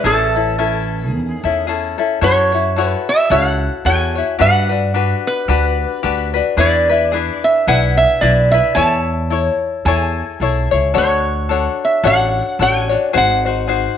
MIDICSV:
0, 0, Header, 1, 5, 480
1, 0, Start_track
1, 0, Key_signature, 3, "minor"
1, 0, Tempo, 545455
1, 39, Time_signature, 4, 2, 24, 8
1, 12298, End_track
2, 0, Start_track
2, 0, Title_t, "Resonator guitar played with a steel bar"
2, 0, Program_c, 0, 25
2, 55, Note_on_c, 0, 69, 73
2, 953, Note_off_c, 0, 69, 0
2, 953, Note_on_c, 0, 68, 73
2, 1450, Note_off_c, 0, 68, 0
2, 1970, Note_on_c, 0, 73, 87
2, 2534, Note_off_c, 0, 73, 0
2, 2534, Note_on_c, 0, 71, 87
2, 2718, Note_on_c, 0, 76, 81
2, 2741, Note_off_c, 0, 71, 0
2, 2914, Note_off_c, 0, 76, 0
2, 2918, Note_on_c, 0, 78, 95
2, 3393, Note_off_c, 0, 78, 0
2, 3396, Note_on_c, 0, 80, 97
2, 3880, Note_off_c, 0, 80, 0
2, 3884, Note_on_c, 0, 78, 103
2, 4639, Note_on_c, 0, 71, 74
2, 4657, Note_off_c, 0, 78, 0
2, 5560, Note_off_c, 0, 71, 0
2, 5805, Note_on_c, 0, 74, 81
2, 6546, Note_off_c, 0, 74, 0
2, 6549, Note_on_c, 0, 76, 84
2, 6740, Note_off_c, 0, 76, 0
2, 6760, Note_on_c, 0, 78, 88
2, 7014, Note_off_c, 0, 78, 0
2, 7018, Note_on_c, 0, 76, 90
2, 7214, Note_off_c, 0, 76, 0
2, 7226, Note_on_c, 0, 74, 81
2, 7487, Note_off_c, 0, 74, 0
2, 7493, Note_on_c, 0, 76, 87
2, 7698, Note_on_c, 0, 81, 104
2, 7713, Note_off_c, 0, 76, 0
2, 8671, Note_off_c, 0, 81, 0
2, 8675, Note_on_c, 0, 80, 78
2, 9396, Note_off_c, 0, 80, 0
2, 9662, Note_on_c, 0, 73, 88
2, 10370, Note_off_c, 0, 73, 0
2, 10425, Note_on_c, 0, 76, 77
2, 10619, Note_off_c, 0, 76, 0
2, 10622, Note_on_c, 0, 78, 93
2, 11057, Note_off_c, 0, 78, 0
2, 11109, Note_on_c, 0, 80, 90
2, 11588, Note_off_c, 0, 80, 0
2, 11593, Note_on_c, 0, 78, 99
2, 12297, Note_off_c, 0, 78, 0
2, 12298, End_track
3, 0, Start_track
3, 0, Title_t, "Ukulele"
3, 0, Program_c, 1, 24
3, 35, Note_on_c, 1, 68, 68
3, 42, Note_on_c, 1, 61, 76
3, 45, Note_on_c, 1, 64, 70
3, 51, Note_on_c, 1, 69, 74
3, 301, Note_off_c, 1, 69, 0
3, 309, Note_off_c, 1, 64, 0
3, 311, Note_on_c, 1, 69, 50
3, 312, Note_off_c, 1, 68, 0
3, 316, Note_off_c, 1, 61, 0
3, 320, Note_on_c, 1, 64, 45
3, 326, Note_on_c, 1, 61, 41
3, 502, Note_off_c, 1, 61, 0
3, 505, Note_off_c, 1, 64, 0
3, 512, Note_off_c, 1, 69, 0
3, 513, Note_on_c, 1, 61, 61
3, 515, Note_on_c, 1, 64, 60
3, 522, Note_on_c, 1, 69, 62
3, 1263, Note_off_c, 1, 69, 0
3, 1263, Note_on_c, 1, 69, 55
3, 1269, Note_off_c, 1, 64, 0
3, 1273, Note_on_c, 1, 64, 49
3, 1282, Note_off_c, 1, 61, 0
3, 1285, Note_on_c, 1, 61, 47
3, 1465, Note_off_c, 1, 69, 0
3, 1466, Note_off_c, 1, 61, 0
3, 1468, Note_on_c, 1, 68, 58
3, 1470, Note_off_c, 1, 64, 0
3, 1476, Note_on_c, 1, 61, 61
3, 1480, Note_on_c, 1, 64, 62
3, 1488, Note_on_c, 1, 69, 60
3, 1732, Note_off_c, 1, 69, 0
3, 1740, Note_off_c, 1, 64, 0
3, 1742, Note_on_c, 1, 69, 52
3, 1746, Note_off_c, 1, 61, 0
3, 1748, Note_off_c, 1, 68, 0
3, 1751, Note_on_c, 1, 64, 46
3, 1757, Note_on_c, 1, 61, 43
3, 1936, Note_off_c, 1, 69, 0
3, 1937, Note_off_c, 1, 64, 0
3, 1947, Note_on_c, 1, 69, 74
3, 1948, Note_on_c, 1, 64, 69
3, 1954, Note_off_c, 1, 61, 0
3, 1957, Note_on_c, 1, 66, 74
3, 1957, Note_on_c, 1, 73, 72
3, 2207, Note_off_c, 1, 73, 0
3, 2218, Note_off_c, 1, 66, 0
3, 2218, Note_on_c, 1, 73, 49
3, 2227, Note_off_c, 1, 69, 0
3, 2228, Note_off_c, 1, 64, 0
3, 2229, Note_on_c, 1, 66, 46
3, 2237, Note_on_c, 1, 64, 41
3, 2429, Note_off_c, 1, 73, 0
3, 2431, Note_off_c, 1, 64, 0
3, 2431, Note_on_c, 1, 69, 57
3, 2432, Note_off_c, 1, 66, 0
3, 2442, Note_on_c, 1, 64, 60
3, 2443, Note_on_c, 1, 66, 60
3, 2448, Note_on_c, 1, 73, 68
3, 2894, Note_off_c, 1, 69, 0
3, 2904, Note_on_c, 1, 69, 65
3, 2905, Note_off_c, 1, 64, 0
3, 2906, Note_off_c, 1, 73, 0
3, 2908, Note_off_c, 1, 66, 0
3, 2912, Note_on_c, 1, 66, 83
3, 2916, Note_on_c, 1, 64, 74
3, 2917, Note_on_c, 1, 73, 78
3, 3376, Note_off_c, 1, 69, 0
3, 3383, Note_off_c, 1, 64, 0
3, 3387, Note_on_c, 1, 69, 49
3, 3393, Note_on_c, 1, 64, 52
3, 3395, Note_off_c, 1, 66, 0
3, 3396, Note_off_c, 1, 73, 0
3, 3398, Note_on_c, 1, 66, 60
3, 3405, Note_on_c, 1, 73, 54
3, 3644, Note_off_c, 1, 73, 0
3, 3655, Note_on_c, 1, 73, 47
3, 3659, Note_off_c, 1, 66, 0
3, 3666, Note_off_c, 1, 64, 0
3, 3667, Note_off_c, 1, 69, 0
3, 3669, Note_on_c, 1, 66, 49
3, 3676, Note_on_c, 1, 64, 37
3, 3855, Note_off_c, 1, 66, 0
3, 3855, Note_off_c, 1, 73, 0
3, 3859, Note_on_c, 1, 67, 71
3, 3862, Note_off_c, 1, 64, 0
3, 3866, Note_on_c, 1, 62, 79
3, 3866, Note_on_c, 1, 66, 81
3, 3874, Note_on_c, 1, 71, 76
3, 4117, Note_off_c, 1, 71, 0
3, 4128, Note_on_c, 1, 71, 46
3, 4133, Note_off_c, 1, 66, 0
3, 4139, Note_off_c, 1, 62, 0
3, 4143, Note_off_c, 1, 67, 0
3, 4144, Note_on_c, 1, 66, 42
3, 4149, Note_on_c, 1, 62, 41
3, 4338, Note_off_c, 1, 62, 0
3, 4343, Note_off_c, 1, 71, 0
3, 4345, Note_off_c, 1, 66, 0
3, 4346, Note_on_c, 1, 67, 54
3, 4348, Note_on_c, 1, 62, 62
3, 4356, Note_on_c, 1, 66, 61
3, 4362, Note_on_c, 1, 71, 67
3, 4814, Note_off_c, 1, 67, 0
3, 4822, Note_off_c, 1, 66, 0
3, 4823, Note_off_c, 1, 62, 0
3, 4825, Note_on_c, 1, 67, 68
3, 4826, Note_on_c, 1, 62, 73
3, 4831, Note_off_c, 1, 71, 0
3, 4833, Note_on_c, 1, 66, 74
3, 4835, Note_on_c, 1, 71, 89
3, 5295, Note_off_c, 1, 67, 0
3, 5305, Note_on_c, 1, 67, 68
3, 5306, Note_off_c, 1, 62, 0
3, 5306, Note_off_c, 1, 66, 0
3, 5310, Note_on_c, 1, 62, 63
3, 5317, Note_on_c, 1, 66, 60
3, 5319, Note_off_c, 1, 71, 0
3, 5323, Note_on_c, 1, 71, 71
3, 5566, Note_off_c, 1, 71, 0
3, 5573, Note_off_c, 1, 66, 0
3, 5577, Note_on_c, 1, 71, 53
3, 5583, Note_on_c, 1, 66, 50
3, 5586, Note_off_c, 1, 67, 0
3, 5588, Note_off_c, 1, 62, 0
3, 5597, Note_on_c, 1, 62, 50
3, 5776, Note_off_c, 1, 62, 0
3, 5781, Note_off_c, 1, 71, 0
3, 5785, Note_on_c, 1, 68, 81
3, 5786, Note_on_c, 1, 62, 77
3, 5789, Note_off_c, 1, 66, 0
3, 5791, Note_on_c, 1, 71, 83
3, 5792, Note_on_c, 1, 64, 80
3, 6056, Note_off_c, 1, 71, 0
3, 6065, Note_off_c, 1, 68, 0
3, 6066, Note_off_c, 1, 62, 0
3, 6066, Note_on_c, 1, 71, 54
3, 6069, Note_off_c, 1, 64, 0
3, 6079, Note_on_c, 1, 64, 53
3, 6088, Note_on_c, 1, 62, 40
3, 6263, Note_on_c, 1, 68, 58
3, 6264, Note_off_c, 1, 62, 0
3, 6269, Note_off_c, 1, 64, 0
3, 6272, Note_off_c, 1, 71, 0
3, 6275, Note_on_c, 1, 62, 62
3, 6279, Note_on_c, 1, 64, 66
3, 6287, Note_on_c, 1, 71, 64
3, 6746, Note_off_c, 1, 62, 0
3, 6751, Note_off_c, 1, 71, 0
3, 6752, Note_off_c, 1, 68, 0
3, 6755, Note_on_c, 1, 68, 69
3, 6756, Note_off_c, 1, 64, 0
3, 6756, Note_on_c, 1, 62, 70
3, 6760, Note_on_c, 1, 64, 75
3, 6762, Note_on_c, 1, 71, 76
3, 7221, Note_off_c, 1, 68, 0
3, 7224, Note_off_c, 1, 62, 0
3, 7225, Note_on_c, 1, 68, 52
3, 7231, Note_off_c, 1, 71, 0
3, 7234, Note_off_c, 1, 64, 0
3, 7235, Note_on_c, 1, 62, 56
3, 7238, Note_on_c, 1, 64, 64
3, 7241, Note_on_c, 1, 71, 56
3, 7499, Note_off_c, 1, 71, 0
3, 7503, Note_off_c, 1, 64, 0
3, 7506, Note_off_c, 1, 68, 0
3, 7509, Note_on_c, 1, 71, 54
3, 7511, Note_off_c, 1, 62, 0
3, 7514, Note_on_c, 1, 64, 49
3, 7521, Note_on_c, 1, 62, 45
3, 7701, Note_off_c, 1, 64, 0
3, 7706, Note_on_c, 1, 69, 80
3, 7707, Note_off_c, 1, 71, 0
3, 7708, Note_off_c, 1, 62, 0
3, 7711, Note_on_c, 1, 64, 83
3, 7711, Note_on_c, 1, 73, 83
3, 8178, Note_off_c, 1, 64, 0
3, 8182, Note_off_c, 1, 69, 0
3, 8186, Note_on_c, 1, 69, 56
3, 8189, Note_on_c, 1, 64, 59
3, 8203, Note_off_c, 1, 73, 0
3, 8203, Note_on_c, 1, 73, 63
3, 8672, Note_off_c, 1, 64, 0
3, 8682, Note_off_c, 1, 69, 0
3, 8682, Note_on_c, 1, 69, 68
3, 8688, Note_off_c, 1, 73, 0
3, 8689, Note_on_c, 1, 64, 70
3, 8690, Note_on_c, 1, 68, 74
3, 8691, Note_on_c, 1, 73, 74
3, 9156, Note_off_c, 1, 64, 0
3, 9157, Note_off_c, 1, 68, 0
3, 9159, Note_off_c, 1, 69, 0
3, 9162, Note_on_c, 1, 69, 51
3, 9166, Note_on_c, 1, 64, 56
3, 9167, Note_on_c, 1, 68, 57
3, 9168, Note_off_c, 1, 73, 0
3, 9172, Note_on_c, 1, 73, 60
3, 9416, Note_off_c, 1, 73, 0
3, 9423, Note_off_c, 1, 69, 0
3, 9424, Note_off_c, 1, 68, 0
3, 9427, Note_on_c, 1, 73, 58
3, 9432, Note_off_c, 1, 64, 0
3, 9434, Note_on_c, 1, 68, 46
3, 9443, Note_on_c, 1, 64, 42
3, 9624, Note_off_c, 1, 73, 0
3, 9625, Note_on_c, 1, 69, 68
3, 9626, Note_off_c, 1, 64, 0
3, 9627, Note_off_c, 1, 68, 0
3, 9629, Note_on_c, 1, 62, 70
3, 9631, Note_on_c, 1, 66, 79
3, 9634, Note_on_c, 1, 73, 78
3, 10100, Note_off_c, 1, 69, 0
3, 10109, Note_off_c, 1, 62, 0
3, 10111, Note_on_c, 1, 69, 59
3, 10116, Note_off_c, 1, 73, 0
3, 10120, Note_on_c, 1, 62, 59
3, 10126, Note_off_c, 1, 66, 0
3, 10128, Note_on_c, 1, 73, 60
3, 10129, Note_on_c, 1, 66, 62
3, 10579, Note_off_c, 1, 69, 0
3, 10584, Note_off_c, 1, 62, 0
3, 10589, Note_on_c, 1, 69, 69
3, 10591, Note_off_c, 1, 73, 0
3, 10593, Note_off_c, 1, 66, 0
3, 10594, Note_on_c, 1, 62, 74
3, 10597, Note_on_c, 1, 66, 74
3, 10602, Note_on_c, 1, 73, 81
3, 11071, Note_off_c, 1, 69, 0
3, 11076, Note_off_c, 1, 62, 0
3, 11080, Note_off_c, 1, 73, 0
3, 11082, Note_on_c, 1, 69, 51
3, 11088, Note_on_c, 1, 62, 56
3, 11091, Note_off_c, 1, 66, 0
3, 11095, Note_on_c, 1, 66, 58
3, 11100, Note_on_c, 1, 73, 62
3, 11335, Note_off_c, 1, 73, 0
3, 11346, Note_on_c, 1, 73, 50
3, 11348, Note_off_c, 1, 66, 0
3, 11355, Note_off_c, 1, 62, 0
3, 11356, Note_off_c, 1, 69, 0
3, 11359, Note_on_c, 1, 66, 47
3, 11365, Note_on_c, 1, 62, 42
3, 11549, Note_off_c, 1, 66, 0
3, 11553, Note_off_c, 1, 62, 0
3, 11554, Note_off_c, 1, 73, 0
3, 11555, Note_on_c, 1, 68, 66
3, 11557, Note_on_c, 1, 63, 74
3, 11559, Note_on_c, 1, 66, 80
3, 11562, Note_on_c, 1, 72, 82
3, 11827, Note_off_c, 1, 72, 0
3, 11833, Note_off_c, 1, 68, 0
3, 11834, Note_off_c, 1, 63, 0
3, 11835, Note_off_c, 1, 66, 0
3, 11838, Note_on_c, 1, 72, 48
3, 11847, Note_on_c, 1, 66, 48
3, 11859, Note_on_c, 1, 63, 39
3, 12029, Note_off_c, 1, 63, 0
3, 12032, Note_off_c, 1, 66, 0
3, 12034, Note_on_c, 1, 68, 55
3, 12037, Note_off_c, 1, 72, 0
3, 12040, Note_on_c, 1, 63, 65
3, 12043, Note_on_c, 1, 66, 68
3, 12048, Note_on_c, 1, 72, 64
3, 12298, Note_off_c, 1, 63, 0
3, 12298, Note_off_c, 1, 66, 0
3, 12298, Note_off_c, 1, 68, 0
3, 12298, Note_off_c, 1, 72, 0
3, 12298, End_track
4, 0, Start_track
4, 0, Title_t, "Steel-string acoustic guitar"
4, 0, Program_c, 2, 25
4, 36, Note_on_c, 2, 52, 59
4, 942, Note_off_c, 2, 52, 0
4, 942, Note_on_c, 2, 51, 59
4, 1440, Note_off_c, 2, 51, 0
4, 12298, End_track
5, 0, Start_track
5, 0, Title_t, "Upright bass"
5, 0, Program_c, 3, 32
5, 33, Note_on_c, 3, 33, 91
5, 990, Note_off_c, 3, 33, 0
5, 990, Note_on_c, 3, 40, 87
5, 1171, Note_off_c, 3, 40, 0
5, 1264, Note_on_c, 3, 40, 72
5, 1711, Note_off_c, 3, 40, 0
5, 1948, Note_on_c, 3, 42, 88
5, 2575, Note_off_c, 3, 42, 0
5, 2905, Note_on_c, 3, 37, 95
5, 3220, Note_off_c, 3, 37, 0
5, 3388, Note_on_c, 3, 40, 90
5, 3702, Note_off_c, 3, 40, 0
5, 3872, Note_on_c, 3, 43, 89
5, 4497, Note_off_c, 3, 43, 0
5, 4823, Note_on_c, 3, 38, 92
5, 5139, Note_off_c, 3, 38, 0
5, 5310, Note_on_c, 3, 38, 86
5, 5624, Note_off_c, 3, 38, 0
5, 5780, Note_on_c, 3, 40, 94
5, 6409, Note_off_c, 3, 40, 0
5, 6753, Note_on_c, 3, 35, 100
5, 7065, Note_off_c, 3, 35, 0
5, 7233, Note_on_c, 3, 35, 94
5, 7546, Note_off_c, 3, 35, 0
5, 7709, Note_on_c, 3, 40, 99
5, 8335, Note_off_c, 3, 40, 0
5, 8669, Note_on_c, 3, 40, 101
5, 8983, Note_off_c, 3, 40, 0
5, 9152, Note_on_c, 3, 35, 74
5, 9402, Note_off_c, 3, 35, 0
5, 9437, Note_on_c, 3, 37, 70
5, 9618, Note_off_c, 3, 37, 0
5, 9639, Note_on_c, 3, 38, 92
5, 10262, Note_off_c, 3, 38, 0
5, 10591, Note_on_c, 3, 33, 98
5, 10906, Note_off_c, 3, 33, 0
5, 11079, Note_on_c, 3, 33, 88
5, 11391, Note_off_c, 3, 33, 0
5, 11567, Note_on_c, 3, 32, 89
5, 12189, Note_off_c, 3, 32, 0
5, 12298, End_track
0, 0, End_of_file